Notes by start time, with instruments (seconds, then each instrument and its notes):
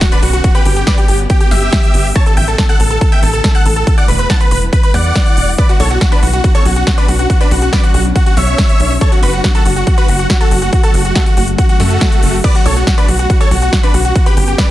Already playing: ambient pad D3 B3 C#4 F#4, impact
0.01 supersaw synth F#4, synth pluck F#4, kick, snare, closed hi-hat
0.12 supersaw synth D4 B4, synth pluck B4, closed hi-hat
0.23 analog synth bass B1, synth pluck F#4, supersaw synth F#4, open hi-hat
0.33 synth pluck F#4, supersaw synth F#4, closed hi-hat
0.44 ambient pad D3 G3 G4, synth pluck F#4, supersaw synth F#4, kick, closed hi-hat
0.55 supersaw synth G4 B4, synth pluck B4, closed hi-hat
0.65 analog synth bass G1, supersaw synth G4, synth pluck G4, open hi-hat
0.76 supersaw synth G4, synth pluck G4, closed hi-hat
0.87 supersaw synth B4 D5, synth pluck D5, kick, snare, closed hi-hat
0.98 supersaw synth G4, synth pluck G4, closed hi-hat
1.08 analog synth bass G1, synth pluck G4, supersaw synth G4, open hi-hat
1.19 closed hi-hat
1.30 synth pluck G4, supersaw synth G4, kick, closed hi-hat
1.40 synth pluck G4, supersaw synth G4, closed hi-hat
1.51 analog synth bass G1, supersaw synth G4 E5, synth pluck E5, snare, open hi-hat
1.62 closed hi-hat
1.73 kick, snare, closed hi-hat
1.83 closed hi-hat
1.94 analog synth bass G1, open hi-hat
2.05 open hi-hat
2.16 ambient pad C#3 E3 A3 E4, supersaw synth C#5 A5, synth pluck A5, kick
2.26 synth pluck A4, supersaw synth A4, closed hi-hat
2.37 analog synth bass A1, supersaw synth E5 G5, synth pluck G5, open hi-hat
2.48 synth pluck A4, supersaw synth A4, closed hi-hat
2.58 synth pluck A4, supersaw synth A4, kick, snare, closed hi-hat
2.69 supersaw synth A4 F#5, synth pluck F#5, closed hi-hat
2.80 analog synth bass A1, synth pluck A4, supersaw synth A4, open hi-hat
2.90 synth pluck A4, supersaw synth A4, closed hi-hat
3.01 synth pluck A4, supersaw synth A4, kick, closed hi-hat
3.12 supersaw synth E5 G5, synth pluck G5, closed hi-hat
3.23 analog synth bass A1, synth pluck A4, supersaw synth A4, open hi-hat
3.33 synth pluck A4, supersaw synth A4, closed hi-hat
3.44 synth pluck A4, supersaw synth A4, kick, snare, closed hi-hat
3.55 supersaw synth A4 F#5, synth pluck F#5, closed hi-hat
3.65 analog synth bass A1, supersaw synth A4, synth pluck A4, open hi-hat
3.76 supersaw synth A4, synth pluck A4, closed hi-hat
3.87 ambient pad D3 G3 B3 E4, supersaw synth A4, synth pluck A4, kick, closed hi-hat
3.98 supersaw synth D5 F#5, synth pluck F#5, closed hi-hat
4.08 analog synth bass E1, synth pluck B4, supersaw synth B4, open hi-hat
4.19 synth pluck B4, supersaw synth B4, closed hi-hat
4.30 supersaw synth F#5 A5, synth pluck A5, kick, snare, closed hi-hat
4.41 supersaw synth B4, synth pluck B4, closed hi-hat
4.51 analog synth bass E1, supersaw synth B4, synth pluck B4, open hi-hat
4.62 closed hi-hat
4.73 supersaw synth B4, synth pluck B4, kick, closed hi-hat
4.83 supersaw synth B4, synth pluck B4, closed hi-hat
4.94 analog synth bass E2, supersaw synth D5 F#5, synth pluck F#5, snare, open hi-hat
5.05 closed hi-hat
5.16 kick, snare, closed hi-hat
5.26 closed hi-hat
5.37 analog synth bass E1, open hi-hat
5.48 open hi-hat
5.58 ambient pad F#3 C#4 D4, supersaw synth B4 D5, synth pluck D5, kick, closed hi-hat
5.69 synth pluck F#4, supersaw synth F#4, closed hi-hat
5.80 analog synth bass B1, supersaw synth A4 C#5, synth pluck C#5, open hi-hat
5.90 supersaw synth F#4, synth pluck F#4, closed hi-hat
6.01 synth pluck F#4, supersaw synth F#4, kick, snare, closed hi-hat
6.12 supersaw synth D4 B4, synth pluck B4, closed hi-hat
6.22 analog synth bass B1, supersaw synth F#4, synth pluck F#4, open hi-hat
6.33 supersaw synth F#4, synth pluck F#4, closed hi-hat
6.44 supersaw synth F#4, synth pluck F#4, kick, closed hi-hat
6.55 supersaw synth A4 C#5, synth pluck C#5, closed hi-hat
6.65 analog synth bass B1, supersaw synth F#4, synth pluck F#4, open hi-hat
6.76 supersaw synth F#4, synth pluck F#4, closed hi-hat
6.87 supersaw synth F#4, synth pluck F#4, kick, snare, closed hi-hat
6.98 supersaw synth D4 B4, synth pluck B4, closed hi-hat
7.08 analog synth bass B1, supersaw synth F#4, synth pluck F#4, open hi-hat
7.19 supersaw synth F#4, synth pluck F#4, closed hi-hat
7.30 supersaw synth F#4, synth pluck F#4, kick, closed hi-hat
7.41 supersaw synth D4 B4, synth pluck B4, closed hi-hat
7.51 analog synth bass B1, supersaw synth F#4, synth pluck F#4, open hi-hat
7.62 supersaw synth F#4, synth pluck F#4, closed hi-hat
7.73 supersaw synth B4 D5, synth pluck D5, kick, snare, closed hi-hat
7.83 supersaw synth F#4, synth pluck F#4, closed hi-hat
7.94 analog synth bass B1, supersaw synth F#4, synth pluck F#4, open hi-hat
8.05 closed hi-hat
8.16 supersaw synth F#4, synth pluck F#4, kick, closed hi-hat
8.26 synth pluck F#4, supersaw synth F#4, closed hi-hat
8.37 analog synth bass B1, supersaw synth C#5 E5, synth pluck E5, snare, open hi-hat
8.48 closed hi-hat
8.58 kick, snare, closed hi-hat
8.69 closed hi-hat
8.80 analog synth bass B1, open hi-hat
8.90 open hi-hat
9.01 ambient pad C#3 A3 F#4, supersaw synth A4 C#5, synth pluck C#5, kick, closed hi-hat
9.12 supersaw synth F#4, synth pluck F#4, closed hi-hat
9.23 analog synth bass F#1, supersaw synth F#4 B4, synth pluck B4, open hi-hat
9.33 synth pluck F#4, supersaw synth F#4, closed hi-hat
9.44 synth pluck F#4, supersaw synth F#4, kick, snare, closed hi-hat
9.55 supersaw synth F#4 A4, synth pluck A4, closed hi-hat
9.65 analog synth bass F#1, supersaw synth F#4, synth pluck F#4, open hi-hat
9.76 synth pluck F#4, supersaw synth F#4, closed hi-hat
9.87 synth pluck F#4, supersaw synth F#4, kick, closed hi-hat
9.98 supersaw synth F#4 B4, synth pluck B4, closed hi-hat
10.08 analog synth bass F#1, synth pluck F#4, supersaw synth F#4, open hi-hat
10.19 supersaw synth F#4, synth pluck F#4, closed hi-hat
10.30 supersaw synth F#4, synth pluck F#4, kick, snare, closed hi-hat
10.41 supersaw synth F#4 A4, synth pluck A4, closed hi-hat
10.51 analog synth bass F#1, supersaw synth F#4, synth pluck F#4, open hi-hat
10.62 synth pluck F#4, supersaw synth F#4, closed hi-hat
10.73 synth pluck F#4, supersaw synth F#4, kick, closed hi-hat
10.83 supersaw synth F#4 A4, synth pluck A4, closed hi-hat
10.94 analog synth bass F#1, synth pluck F#4, supersaw synth F#4, open hi-hat
11.05 synth pluck F#4, supersaw synth F#4, closed hi-hat
11.15 supersaw synth A3 F#4, synth pluck F#4, kick, snare, closed hi-hat
11.26 synth pluck F#4, supersaw synth F#4, closed hi-hat
11.37 analog synth bass F#1, supersaw synth F#4, synth pluck F#4, open hi-hat
11.48 closed hi-hat
11.58 synth pluck F#4, supersaw synth F#4, kick, closed hi-hat
11.69 supersaw synth F#4, synth pluck F#4, closed hi-hat
11.80 analog synth bass F#2, supersaw synth A3 F#4, synth pluck F#4, snare, open hi-hat
11.90 closed hi-hat
12.01 kick, snare, closed hi-hat
12.12 closed hi-hat
12.23 analog synth bass F#1, open hi-hat
12.33 open hi-hat
12.44 ambient pad D3 B3 C#4 F#4, supersaw synth B4 D5, synth pluck D5, kick, closed hi-hat, crash
12.55 supersaw synth F#4, synth pluck F#4, closed hi-hat
12.66 analog synth bass B1, supersaw synth A4 C#5, synth pluck C#5, open hi-hat
12.76 synth pluck F#4, supersaw synth F#4, closed hi-hat
12.87 supersaw synth F#4, synth pluck F#4, kick, snare, closed hi-hat
12.98 supersaw synth D4 B4, synth pluck B4, closed hi-hat
13.08 analog synth bass B1, supersaw synth F#4, synth pluck F#4, open hi-hat
13.19 synth pluck F#4, supersaw synth F#4, closed hi-hat
13.30 supersaw synth F#4, synth pluck F#4, kick, closed hi-hat
13.40 supersaw synth A4 C#5, synth pluck C#5, closed hi-hat
13.51 analog synth bass B1, supersaw synth F#4, synth pluck F#4, open hi-hat
13.62 supersaw synth F#4, synth pluck F#4, closed hi-hat
13.73 supersaw synth F#4, synth pluck F#4, kick, snare, closed hi-hat
13.83 supersaw synth D4 B4, synth pluck B4, closed hi-hat
13.94 analog synth bass B1, supersaw synth F#4, synth pluck F#4, open hi-hat
14.05 synth pluck F#4, supersaw synth F#4, closed hi-hat
14.15 ambient pad G3 G4, supersaw synth F#4, synth pluck F#4, kick, closed hi-hat
14.26 supersaw synth G4 B4, synth pluck B4, closed hi-hat
14.37 analog synth bass G1, synth pluck G4, supersaw synth G4, open hi-hat
14.48 supersaw synth G4, synth pluck G4, closed hi-hat
14.58 supersaw synth B4 D5, synth pluck D5, kick, snare, closed hi-hat